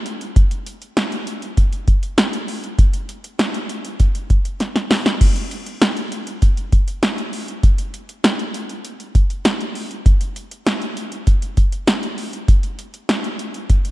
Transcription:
0.06 closed hi-hat medium
0.21 closed hi-hat medium
0.36 kick loud
0.36 closed hi-hat medium
0.51 closed hi-hat medium
0.66 closed hi-hat medium
0.82 closed hi-hat medium
0.97 snare loud
0.97 closed hi-hat medium
1.12 closed hi-hat medium
1.27 closed hi-hat medium
1.42 closed hi-hat medium
1.57 kick medium
1.57 closed hi-hat medium
1.73 closed hi-hat medium
1.88 kick medium
1.88 closed hi-hat medium
2.03 closed hi-hat medium
2.18 snare loud
2.18 closed hi-hat medium
2.33 closed hi-hat medium
2.48 open hi-hat medium
2.64 closed hi-hat medium
2.79 kick loud
2.79 closed hi-hat medium
2.93 closed hi-hat medium
3.09 closed hi-hat medium
3.24 closed hi-hat medium
3.39 snare loud
3.39 closed hi-hat medium
3.54 closed hi-hat medium
3.69 closed hi-hat medium
3.85 closed hi-hat medium
4.00 kick medium
4.00 closed hi-hat medium
4.15 closed hi-hat medium
4.30 kick medium
4.30 closed hi-hat medium
4.45 closed hi-hat medium
4.60 snare medium
4.60 closed hi-hat medium
4.76 snare medium
4.76 closed hi-hat medium
4.91 snare medium
4.91 open hi-hat medium
5.06 snare medium
5.06 closed hi-hat soft
5.21 kick loud
5.21 closed hi-hat medium
5.21 crash loud
5.36 closed hi-hat medium
5.51 closed hi-hat medium
5.66 closed hi-hat medium
5.82 snare loud
5.82 closed hi-hat medium
5.97 closed hi-hat medium
6.12 closed hi-hat medium
6.27 closed hi-hat medium
6.42 kick medium
6.42 closed hi-hat medium
6.57 closed hi-hat medium
6.72 kick medium
6.72 closed hi-hat medium
6.88 closed hi-hat medium
7.03 snare loud
7.03 closed hi-hat medium
7.18 closed hi-hat medium
7.33 open hi-hat medium
7.48 closed hi-hat medium
7.63 kick loud
7.63 closed hi-hat medium
7.78 closed hi-hat medium
7.94 closed hi-hat medium
8.09 closed hi-hat medium
8.24 snare loud
8.24 closed hi-hat medium
8.39 closed hi-hat medium
8.54 closed hi-hat medium
8.69 closed hi-hat medium
8.85 closed hi-hat medium
9.00 closed hi-hat medium
9.15 kick medium
9.15 closed hi-hat medium
9.30 closed hi-hat medium
9.45 snare loud
9.45 closed hi-hat medium
9.61 closed hi-hat medium
9.75 open hi-hat medium
9.91 closed hi-hat medium
10.06 kick loud
10.06 closed hi-hat medium
10.21 closed hi-hat medium
10.36 closed hi-hat medium
10.51 closed hi-hat medium
10.67 snare loud
10.67 closed hi-hat medium
10.82 closed hi-hat medium
10.97 closed hi-hat medium
11.12 closed hi-hat medium
11.27 kick medium
11.27 closed hi-hat medium
11.42 closed hi-hat medium
11.57 kick medium
11.57 closed hi-hat medium
11.72 closed hi-hat medium
11.87 snare loud
11.87 closed hi-hat medium
12.03 closed hi-hat medium
12.18 open hi-hat medium
12.33 closed hi-hat medium
12.48 kick loud
12.48 closed hi-hat medium
12.63 closed hi-hat medium
12.79 closed hi-hat medium
12.94 closed hi-hat medium
13.09 snare loud
13.09 closed hi-hat medium
13.24 closed hi-hat medium
13.39 closed hi-hat medium
13.54 closed hi-hat medium
13.70 kick medium
13.70 closed hi-hat medium
13.85 closed hi-hat medium

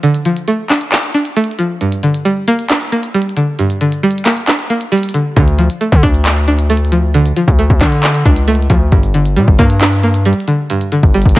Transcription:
0.00 1.14 D3 medium
0.00 0.24 F3 medium
0.00 0.47 A3 medium
0.00 0.48 D4 medium
0.00 0.26 D5 medium
0.00 closed hi-hat medium
0.14 closed hi-hat medium
0.25 1.37 F3 medium
0.25 closed hi-hat medium
0.37 closed hi-hat medium
0.48 1.35 A3 medium
0.48 closed hi-hat medium
0.70 1.13 D4 loud
0.70 clap medium
0.70 open hi-hat medium
0.81 closed hi-hat medium
0.92 1.81 D5 medium
0.92 clap loud
0.92 closed hi-hat medium
1.03 closed hi-hat medium
1.14 1.81 D4 medium
1.14 closed hi-hat medium
1.25 closed hi-hat medium
1.37 1.81 A3 medium
1.37 closed hi-hat medium
1.44 closed hi-hat medium
1.51 closed hi-hat soft
1.59 1.81 F3 medium
1.59 closed hi-hat medium
1.81 2.92 G2 medium
1.81 closed hi-hat medium
1.92 closed hi-hat medium
2.03 3.14 D3 medium
2.03 closed hi-hat medium
2.14 closed hi-hat medium
2.25 3.13 G3 medium
2.25 closed hi-hat medium
2.48 2.91 A#3 loud
2.48 closed hi-hat medium
2.59 closed hi-hat medium
2.70 3.81 D4 medium
2.70 clap loud
2.70 closed hi-hat medium
2.81 closed hi-hat medium
2.92 4.03 A#3 medium
2.92 closed hi-hat medium
3.03 closed hi-hat medium
3.14 4.02 G3 medium
3.14 closed hi-hat medium
3.22 closed hi-hat medium
3.29 closed hi-hat medium
3.37 3.80 D3 medium
3.37 closed hi-hat medium
3.59 4.70 G2 medium
3.59 closed hi-hat medium
3.70 closed hi-hat medium
3.81 4.92 D3 medium
3.81 closed hi-hat medium
3.92 closed hi-hat medium
4.03 4.91 G3 medium
4.03 closed hi-hat medium
4.11 closed hi-hat medium
4.18 closed hi-hat medium
4.25 4.69 A#3 loud
4.25 clap medium
4.25 open hi-hat medium
4.37 closed hi-hat medium
4.48 5.37 D4 medium
4.48 clap loud
4.48 closed hi-hat medium
4.59 closed hi-hat medium
4.70 5.37 A#3 medium
4.70 closed hi-hat medium
4.81 closed hi-hat medium
4.92 5.36 G3 loud
4.92 closed hi-hat medium
4.98 closed hi-hat medium
5.03 closed hi-hat medium
5.09 closed hi-hat medium
5.14 5.35 D3 medium
5.14 closed hi-hat medium
5.36 5.69 D2 loud
5.36 6.48 D3 medium
5.36 kick loud
5.36 closed hi-hat medium
5.48 closed hi-hat medium
5.58 6.70 F3 medium
5.58 closed hi-hat medium
5.70 closed hi-hat medium
5.81 6.68 A3 medium
5.81 closed hi-hat medium
5.92 6.03 D3 loud
5.92 kick medium
6.03 7.33 D2 loud
6.03 6.47 D4 loud
6.03 kick loud
6.03 closed hi-hat medium
6.14 closed hi-hat medium
6.25 7.37 D5 medium
6.25 clap loud
6.25 closed hi-hat medium
6.37 closed hi-hat medium
6.48 7.59 D4 medium
6.48 closed hi-hat medium
6.59 closed hi-hat medium
6.70 7.58 A3 loud
6.70 closed hi-hat medium
6.77 closed hi-hat medium
6.85 closed hi-hat soft
6.92 7.35 F3 medium
6.92 closed hi-hat medium
7.14 8.25 D3 medium
7.14 closed hi-hat medium
7.26 closed hi-hat medium
7.37 8.48 F3 medium
7.37 closed hi-hat medium
7.48 7.69 D2 loud
7.48 kick medium
7.48 closed hi-hat medium
7.59 8.47 A3 medium
7.59 closed hi-hat medium
7.70 7.81 D2 loud
7.70 kick medium
7.81 8.24 D3 loud
7.81 8.24 D4 loud
7.81 kick loud
7.81 clap medium
7.81 open hi-hat medium
7.92 closed hi-hat medium
8.03 8.92 D5 medium
8.03 clap loud
8.03 closed hi-hat medium
8.14 closed hi-hat medium
8.26 8.68 C#2 loud
8.26 8.92 D4 medium
8.26 kick loud
8.26 closed hi-hat medium
8.36 closed hi-hat medium
8.48 8.92 A3 medium
8.48 closed hi-hat medium
8.55 closed hi-hat medium
8.62 closed hi-hat soft
8.70 8.91 D2 loud
8.70 8.92 F3 medium
8.70 kick loud
8.70 closed hi-hat medium
8.92 9.38 G1 loud
8.92 10.03 G2 medium
8.92 kick loud
8.92 closed hi-hat medium
9.03 closed hi-hat medium
9.14 10.25 D3 medium
9.14 closed hi-hat medium
9.26 closed hi-hat medium
9.36 9.47 A#2 loud
9.36 10.24 G3 medium
9.36 closed hi-hat medium
9.48 9.58 G1 loud
9.48 kick medium
9.59 10.34 G2 loud
9.59 10.02 A#3 loud
9.59 kick loud
9.59 closed hi-hat medium
9.70 closed hi-hat medium
9.81 10.92 D4 medium
9.81 clap loud
9.81 closed hi-hat medium
9.92 closed hi-hat medium
10.03 11.14 A#3 medium
10.03 closed hi-hat medium
10.14 closed hi-hat medium
10.25 11.13 G3 medium
10.25 closed hi-hat medium
10.33 closed hi-hat medium
10.40 closed hi-hat soft
10.48 10.91 D3 medium
10.48 closed hi-hat medium
10.70 11.39 G2 medium
10.70 closed hi-hat medium
10.81 closed hi-hat medium
10.92 11.39 D3 medium
10.92 closed hi-hat medium
11.03 11.25 G1 loud
11.03 kick loud
11.03 closed hi-hat medium
11.14 11.39 G3 medium
11.14 closed hi-hat medium
11.22 11.36 G1 loud
11.22 kick medium
11.22 closed hi-hat medium
11.29 closed hi-hat medium

